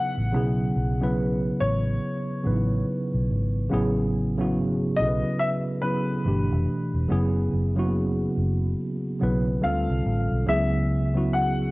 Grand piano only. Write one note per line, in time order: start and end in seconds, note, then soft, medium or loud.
0.00 1.13 F#5 medium
1.60 2.82 C#5 medium
4.96 5.40 D#5 medium
5.39 5.49 E5 medium
5.81 9.58 B4 medium
9.64 10.50 F5 medium
10.49 11.35 E5 medium
11.33 11.71 F#5 medium